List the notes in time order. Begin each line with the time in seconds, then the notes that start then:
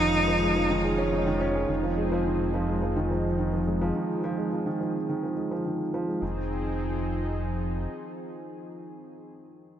Already playing: F1 F3 G#3 C#4 D#4 F4
0.00 D#3
0.28 F3
0.42 G#3
0.56 F3
0.70 D#3
0.84 G#4
0.98 C#4
1.12 D#4
1.27 D#3
1.41 C#4
1.55 G#4
1.69 F1 D#3 F3 C4 D#4 G#4
1.83 F3
1.98 G#3
2.12 F3
2.26 D#3
2.54 F3
2.68 G#3
2.82 F3
2.96 D#3
3.11 F3
3.39 D#3
3.53 F3
3.67 G#3
3.81 F3
3.96 D#3
4.24 F3
4.38 G#3
4.52 F3
4.66 D#3
4.81 F3
5.09 D#3
5.23 F3
5.37 G#3
5.51 F3
5.65 D#3
5.94 F3
6.08 G#3
6.21 F1 D#3 F3 C4 D#4 G#4